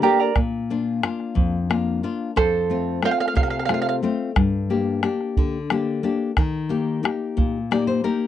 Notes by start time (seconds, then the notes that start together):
0.02 A#3 D4 G4 A#4 D5 G5 A#5
0.20 A#4 D5 A#5
0.36 A#2, bombo rim, bombo low
0.70 A#3 D4 F4
1.03 A#3 D4 F4, bombo rim
1.20 bombo rim
1.35 F2, bombo low
1.70 A#3 D4 F4, bombo rim
2.03 A#3 D4 F4
2.36 F2 A4 C5, bombo rim, bombo low
2.70 A3 C4 F4
3.02 A3 C4 F4 C5 F5, bombo rim
3.11 F5
3.20 F5, bombo rim
3.28 F5
3.35 C3 F5, bombo low
3.43 F5
3.50 F5
3.59 F5
3.65 A3 C4 F5, bombo rim
3.70 F4
3.74 F5
3.82 F5
3.89 F5
4.03 A3 C4 F4
4.36 G2, bombo rim, bombo low
4.70 A#3 D4 G4
5.03 A#3 D4 G4, bombo rim
5.21 bombo rim
5.37 D3, bombo low
5.70 A#3 D4 G4, bombo rim
6.03 A#3 D4 G4
6.37 D#3, bombo rim, bombo low
6.69 A#3 D#4 G4, bombo rim
7.03 A#3 D#4 G4, bombo rim
7.37 A#2, bombo rim, bombo low
7.71 A#3 D#4 G4 D5, bombo rim
7.87 C5
8.04 A#3 D#4 G4 A#4, bombo rim